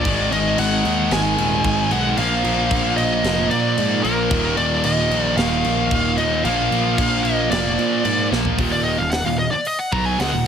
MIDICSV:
0, 0, Header, 1, 8, 480
1, 0, Start_track
1, 0, Tempo, 533808
1, 41, Time_signature, 4, 2, 24, 8
1, 9416, End_track
2, 0, Start_track
2, 0, Title_t, "Lead electric guitar"
2, 0, Program_c, 0, 29
2, 0, Note_on_c, 0, 74, 107
2, 251, Note_off_c, 0, 74, 0
2, 293, Note_on_c, 0, 75, 87
2, 510, Note_off_c, 0, 75, 0
2, 531, Note_on_c, 0, 78, 103
2, 1009, Note_off_c, 0, 78, 0
2, 1013, Note_on_c, 0, 80, 102
2, 1725, Note_off_c, 0, 80, 0
2, 1729, Note_on_c, 0, 78, 114
2, 1947, Note_off_c, 0, 78, 0
2, 1959, Note_on_c, 0, 77, 105
2, 2642, Note_off_c, 0, 77, 0
2, 2668, Note_on_c, 0, 75, 97
2, 3147, Note_off_c, 0, 75, 0
2, 3151, Note_on_c, 0, 74, 95
2, 3623, Note_on_c, 0, 70, 101
2, 3648, Note_off_c, 0, 74, 0
2, 4076, Note_off_c, 0, 70, 0
2, 4110, Note_on_c, 0, 74, 100
2, 4336, Note_off_c, 0, 74, 0
2, 4364, Note_on_c, 0, 75, 95
2, 4688, Note_off_c, 0, 75, 0
2, 4688, Note_on_c, 0, 74, 95
2, 4807, Note_off_c, 0, 74, 0
2, 4830, Note_on_c, 0, 77, 91
2, 5550, Note_off_c, 0, 77, 0
2, 5553, Note_on_c, 0, 75, 106
2, 5777, Note_off_c, 0, 75, 0
2, 5797, Note_on_c, 0, 77, 97
2, 6505, Note_off_c, 0, 77, 0
2, 6508, Note_on_c, 0, 75, 82
2, 6744, Note_off_c, 0, 75, 0
2, 6748, Note_on_c, 0, 74, 72
2, 7437, Note_off_c, 0, 74, 0
2, 7841, Note_on_c, 0, 74, 76
2, 7947, Note_off_c, 0, 74, 0
2, 7951, Note_on_c, 0, 75, 76
2, 8075, Note_off_c, 0, 75, 0
2, 8075, Note_on_c, 0, 77, 84
2, 8184, Note_on_c, 0, 78, 94
2, 8193, Note_off_c, 0, 77, 0
2, 8307, Note_off_c, 0, 78, 0
2, 8317, Note_on_c, 0, 77, 87
2, 8434, Note_off_c, 0, 77, 0
2, 8444, Note_on_c, 0, 75, 87
2, 8547, Note_off_c, 0, 75, 0
2, 8551, Note_on_c, 0, 74, 73
2, 8692, Note_off_c, 0, 74, 0
2, 8692, Note_on_c, 0, 75, 76
2, 8802, Note_off_c, 0, 75, 0
2, 8802, Note_on_c, 0, 78, 64
2, 8917, Note_off_c, 0, 78, 0
2, 8922, Note_on_c, 0, 82, 106
2, 9041, Note_off_c, 0, 82, 0
2, 9041, Note_on_c, 0, 80, 94
2, 9157, Note_off_c, 0, 80, 0
2, 9173, Note_on_c, 0, 78, 83
2, 9416, Note_off_c, 0, 78, 0
2, 9416, End_track
3, 0, Start_track
3, 0, Title_t, "Distorted electric guitar"
3, 0, Program_c, 1, 30
3, 1003, Note_on_c, 1, 44, 82
3, 1014, Note_on_c, 1, 51, 92
3, 1021, Note_on_c, 1, 56, 95
3, 1946, Note_off_c, 1, 44, 0
3, 1952, Note_off_c, 1, 51, 0
3, 1956, Note_off_c, 1, 56, 0
3, 2924, Note_on_c, 1, 46, 89
3, 2927, Note_on_c, 1, 53, 90
3, 2937, Note_on_c, 1, 58, 95
3, 3865, Note_off_c, 1, 46, 0
3, 3867, Note_off_c, 1, 53, 0
3, 4841, Note_on_c, 1, 39, 92
3, 4847, Note_on_c, 1, 46, 86
3, 4858, Note_on_c, 1, 51, 93
3, 5779, Note_off_c, 1, 46, 0
3, 5784, Note_off_c, 1, 39, 0
3, 5792, Note_off_c, 1, 51, 0
3, 5807, Note_off_c, 1, 58, 0
3, 6748, Note_on_c, 1, 46, 85
3, 6756, Note_on_c, 1, 53, 83
3, 6769, Note_on_c, 1, 58, 102
3, 7699, Note_off_c, 1, 46, 0
3, 7703, Note_off_c, 1, 53, 0
3, 7709, Note_off_c, 1, 58, 0
3, 9416, End_track
4, 0, Start_track
4, 0, Title_t, "Distorted electric guitar"
4, 0, Program_c, 2, 30
4, 47, Note_on_c, 2, 44, 79
4, 60, Note_on_c, 2, 51, 96
4, 78, Note_on_c, 2, 56, 84
4, 1705, Note_off_c, 2, 56, 0
4, 1708, Note_off_c, 2, 44, 0
4, 1715, Note_off_c, 2, 51, 0
4, 1716, Note_on_c, 2, 56, 87
4, 1731, Note_on_c, 2, 51, 72
4, 1740, Note_on_c, 2, 44, 72
4, 1943, Note_off_c, 2, 56, 0
4, 1951, Note_off_c, 2, 51, 0
4, 1954, Note_off_c, 2, 44, 0
4, 1958, Note_on_c, 2, 46, 91
4, 1979, Note_on_c, 2, 53, 99
4, 1986, Note_on_c, 2, 58, 98
4, 3622, Note_off_c, 2, 46, 0
4, 3624, Note_off_c, 2, 58, 0
4, 3628, Note_on_c, 2, 58, 90
4, 3633, Note_off_c, 2, 53, 0
4, 3644, Note_on_c, 2, 53, 77
4, 3654, Note_on_c, 2, 46, 81
4, 3866, Note_off_c, 2, 53, 0
4, 3871, Note_off_c, 2, 46, 0
4, 3879, Note_on_c, 2, 39, 90
4, 3892, Note_on_c, 2, 46, 99
4, 3906, Note_on_c, 2, 51, 104
4, 5542, Note_off_c, 2, 39, 0
4, 5546, Note_off_c, 2, 51, 0
4, 5549, Note_off_c, 2, 46, 0
4, 5557, Note_on_c, 2, 51, 86
4, 5572, Note_on_c, 2, 46, 75
4, 5583, Note_on_c, 2, 39, 69
4, 5776, Note_off_c, 2, 46, 0
4, 5782, Note_off_c, 2, 51, 0
4, 5786, Note_on_c, 2, 46, 91
4, 5795, Note_off_c, 2, 39, 0
4, 5806, Note_on_c, 2, 53, 92
4, 5813, Note_off_c, 2, 58, 0
4, 5817, Note_on_c, 2, 58, 103
4, 7457, Note_off_c, 2, 46, 0
4, 7465, Note_off_c, 2, 58, 0
4, 7467, Note_off_c, 2, 53, 0
4, 7476, Note_on_c, 2, 58, 81
4, 7490, Note_on_c, 2, 53, 73
4, 7502, Note_on_c, 2, 46, 67
4, 7702, Note_off_c, 2, 58, 0
4, 7709, Note_off_c, 2, 53, 0
4, 7710, Note_off_c, 2, 46, 0
4, 7716, Note_on_c, 2, 39, 95
4, 7721, Note_on_c, 2, 46, 102
4, 7726, Note_on_c, 2, 51, 93
4, 8070, Note_off_c, 2, 39, 0
4, 8072, Note_off_c, 2, 46, 0
4, 8075, Note_off_c, 2, 51, 0
4, 8083, Note_on_c, 2, 39, 59
4, 8085, Note_on_c, 2, 46, 65
4, 8273, Note_off_c, 2, 39, 0
4, 8274, Note_off_c, 2, 46, 0
4, 8330, Note_on_c, 2, 39, 64
4, 8334, Note_on_c, 2, 46, 64
4, 8516, Note_off_c, 2, 39, 0
4, 8518, Note_off_c, 2, 46, 0
4, 8927, Note_on_c, 2, 47, 80
4, 8937, Note_on_c, 2, 54, 90
4, 8945, Note_on_c, 2, 59, 105
4, 9157, Note_off_c, 2, 47, 0
4, 9162, Note_off_c, 2, 54, 0
4, 9163, Note_on_c, 2, 49, 80
4, 9166, Note_off_c, 2, 59, 0
4, 9170, Note_on_c, 2, 56, 95
4, 9275, Note_off_c, 2, 49, 0
4, 9278, Note_off_c, 2, 56, 0
4, 9285, Note_on_c, 2, 39, 71
4, 9285, Note_on_c, 2, 46, 73
4, 9395, Note_off_c, 2, 39, 0
4, 9400, Note_off_c, 2, 46, 0
4, 9416, End_track
5, 0, Start_track
5, 0, Title_t, "Picked electric bass"
5, 0, Program_c, 3, 34
5, 46, Note_on_c, 3, 32, 91
5, 268, Note_off_c, 3, 32, 0
5, 283, Note_on_c, 3, 32, 85
5, 506, Note_off_c, 3, 32, 0
5, 519, Note_on_c, 3, 32, 86
5, 744, Note_off_c, 3, 32, 0
5, 764, Note_on_c, 3, 39, 77
5, 987, Note_off_c, 3, 39, 0
5, 999, Note_on_c, 3, 32, 99
5, 1224, Note_off_c, 3, 32, 0
5, 1241, Note_on_c, 3, 27, 91
5, 1465, Note_off_c, 3, 27, 0
5, 1481, Note_on_c, 3, 32, 88
5, 1704, Note_off_c, 3, 32, 0
5, 1718, Note_on_c, 3, 35, 80
5, 1943, Note_off_c, 3, 35, 0
5, 1952, Note_on_c, 3, 34, 97
5, 2180, Note_off_c, 3, 34, 0
5, 2196, Note_on_c, 3, 34, 89
5, 2421, Note_off_c, 3, 34, 0
5, 2436, Note_on_c, 3, 34, 92
5, 2885, Note_off_c, 3, 34, 0
5, 2915, Note_on_c, 3, 29, 105
5, 3141, Note_off_c, 3, 29, 0
5, 3157, Note_on_c, 3, 46, 89
5, 3381, Note_off_c, 3, 46, 0
5, 3400, Note_on_c, 3, 44, 89
5, 3623, Note_off_c, 3, 44, 0
5, 3640, Note_on_c, 3, 34, 80
5, 3863, Note_off_c, 3, 34, 0
5, 3873, Note_on_c, 3, 27, 97
5, 4099, Note_off_c, 3, 27, 0
5, 4112, Note_on_c, 3, 27, 90
5, 4338, Note_off_c, 3, 27, 0
5, 4354, Note_on_c, 3, 27, 85
5, 4579, Note_off_c, 3, 27, 0
5, 4591, Note_on_c, 3, 34, 87
5, 4818, Note_off_c, 3, 34, 0
5, 4830, Note_on_c, 3, 27, 110
5, 5057, Note_off_c, 3, 27, 0
5, 5079, Note_on_c, 3, 34, 74
5, 5302, Note_off_c, 3, 34, 0
5, 5316, Note_on_c, 3, 27, 90
5, 5540, Note_off_c, 3, 27, 0
5, 5559, Note_on_c, 3, 39, 75
5, 5782, Note_off_c, 3, 39, 0
5, 5798, Note_on_c, 3, 34, 108
5, 6021, Note_off_c, 3, 34, 0
5, 6032, Note_on_c, 3, 34, 87
5, 6258, Note_off_c, 3, 34, 0
5, 6278, Note_on_c, 3, 34, 83
5, 6726, Note_off_c, 3, 34, 0
5, 6751, Note_on_c, 3, 29, 102
5, 6978, Note_off_c, 3, 29, 0
5, 6998, Note_on_c, 3, 46, 91
5, 7221, Note_off_c, 3, 46, 0
5, 7235, Note_on_c, 3, 44, 81
5, 7460, Note_off_c, 3, 44, 0
5, 7479, Note_on_c, 3, 34, 82
5, 7702, Note_off_c, 3, 34, 0
5, 7718, Note_on_c, 3, 27, 88
5, 8053, Note_off_c, 3, 27, 0
5, 8081, Note_on_c, 3, 27, 81
5, 8303, Note_off_c, 3, 27, 0
5, 8326, Note_on_c, 3, 27, 72
5, 8546, Note_off_c, 3, 27, 0
5, 8923, Note_on_c, 3, 35, 88
5, 9145, Note_off_c, 3, 35, 0
5, 9165, Note_on_c, 3, 37, 96
5, 9275, Note_off_c, 3, 37, 0
5, 9288, Note_on_c, 3, 27, 78
5, 9396, Note_off_c, 3, 27, 0
5, 9416, End_track
6, 0, Start_track
6, 0, Title_t, "Muted distorted electric guitar strokes"
6, 8573, Note_on_c, 9, 29, 51
6, 8663, Note_off_c, 9, 29, 0
6, 9416, End_track
7, 0, Start_track
7, 0, Title_t, "Muted picked electric bass strokes"
7, 8564, Note_on_c, 9, 29, 35
7, 8654, Note_off_c, 9, 29, 0
7, 9416, End_track
8, 0, Start_track
8, 0, Title_t, "Drums"
8, 45, Note_on_c, 9, 49, 101
8, 46, Note_on_c, 9, 36, 104
8, 135, Note_off_c, 9, 49, 0
8, 136, Note_off_c, 9, 36, 0
8, 290, Note_on_c, 9, 49, 70
8, 380, Note_off_c, 9, 49, 0
8, 522, Note_on_c, 9, 49, 101
8, 612, Note_off_c, 9, 49, 0
8, 765, Note_on_c, 9, 49, 68
8, 855, Note_off_c, 9, 49, 0
8, 999, Note_on_c, 9, 49, 92
8, 1010, Note_on_c, 9, 38, 112
8, 1089, Note_off_c, 9, 49, 0
8, 1100, Note_off_c, 9, 38, 0
8, 1244, Note_on_c, 9, 49, 60
8, 1334, Note_off_c, 9, 49, 0
8, 1479, Note_on_c, 9, 49, 86
8, 1480, Note_on_c, 9, 36, 91
8, 1569, Note_off_c, 9, 36, 0
8, 1569, Note_off_c, 9, 49, 0
8, 1717, Note_on_c, 9, 49, 57
8, 1807, Note_off_c, 9, 49, 0
8, 1955, Note_on_c, 9, 49, 82
8, 2045, Note_off_c, 9, 49, 0
8, 2199, Note_on_c, 9, 49, 66
8, 2288, Note_off_c, 9, 49, 0
8, 2437, Note_on_c, 9, 36, 91
8, 2437, Note_on_c, 9, 49, 82
8, 2527, Note_off_c, 9, 36, 0
8, 2527, Note_off_c, 9, 49, 0
8, 2678, Note_on_c, 9, 49, 63
8, 2768, Note_off_c, 9, 49, 0
8, 2917, Note_on_c, 9, 49, 79
8, 2927, Note_on_c, 9, 38, 122
8, 3007, Note_off_c, 9, 49, 0
8, 3017, Note_off_c, 9, 38, 0
8, 3156, Note_on_c, 9, 49, 61
8, 3246, Note_off_c, 9, 49, 0
8, 3395, Note_on_c, 9, 49, 74
8, 3485, Note_off_c, 9, 49, 0
8, 3637, Note_on_c, 9, 49, 62
8, 3727, Note_off_c, 9, 49, 0
8, 3874, Note_on_c, 9, 49, 83
8, 3875, Note_on_c, 9, 36, 127
8, 3963, Note_off_c, 9, 49, 0
8, 3965, Note_off_c, 9, 36, 0
8, 4112, Note_on_c, 9, 49, 60
8, 4201, Note_off_c, 9, 49, 0
8, 4349, Note_on_c, 9, 49, 94
8, 4439, Note_off_c, 9, 49, 0
8, 4598, Note_on_c, 9, 49, 67
8, 4688, Note_off_c, 9, 49, 0
8, 4833, Note_on_c, 9, 49, 84
8, 4844, Note_on_c, 9, 38, 108
8, 4923, Note_off_c, 9, 49, 0
8, 4934, Note_off_c, 9, 38, 0
8, 5075, Note_on_c, 9, 49, 65
8, 5165, Note_off_c, 9, 49, 0
8, 5315, Note_on_c, 9, 49, 80
8, 5317, Note_on_c, 9, 36, 97
8, 5405, Note_off_c, 9, 49, 0
8, 5406, Note_off_c, 9, 36, 0
8, 5554, Note_on_c, 9, 49, 59
8, 5644, Note_off_c, 9, 49, 0
8, 5799, Note_on_c, 9, 49, 74
8, 5889, Note_off_c, 9, 49, 0
8, 6044, Note_on_c, 9, 49, 61
8, 6134, Note_off_c, 9, 49, 0
8, 6279, Note_on_c, 9, 36, 94
8, 6280, Note_on_c, 9, 49, 95
8, 6369, Note_off_c, 9, 36, 0
8, 6370, Note_off_c, 9, 49, 0
8, 6518, Note_on_c, 9, 49, 58
8, 6608, Note_off_c, 9, 49, 0
8, 6758, Note_on_c, 9, 49, 90
8, 6769, Note_on_c, 9, 38, 114
8, 6848, Note_off_c, 9, 49, 0
8, 6859, Note_off_c, 9, 38, 0
8, 7002, Note_on_c, 9, 49, 52
8, 7092, Note_off_c, 9, 49, 0
8, 7238, Note_on_c, 9, 49, 80
8, 7328, Note_off_c, 9, 49, 0
8, 7487, Note_on_c, 9, 38, 67
8, 7577, Note_off_c, 9, 38, 0
8, 7599, Note_on_c, 9, 43, 92
8, 7689, Note_off_c, 9, 43, 0
8, 7718, Note_on_c, 9, 46, 57
8, 7721, Note_on_c, 9, 36, 97
8, 7808, Note_off_c, 9, 46, 0
8, 7810, Note_off_c, 9, 36, 0
8, 8197, Note_on_c, 9, 46, 57
8, 8208, Note_on_c, 9, 38, 112
8, 8287, Note_off_c, 9, 46, 0
8, 8298, Note_off_c, 9, 38, 0
8, 8677, Note_on_c, 9, 46, 59
8, 8767, Note_off_c, 9, 46, 0
8, 8924, Note_on_c, 9, 36, 83
8, 9014, Note_off_c, 9, 36, 0
8, 9170, Note_on_c, 9, 46, 60
8, 9180, Note_on_c, 9, 38, 111
8, 9260, Note_off_c, 9, 46, 0
8, 9270, Note_off_c, 9, 38, 0
8, 9416, End_track
0, 0, End_of_file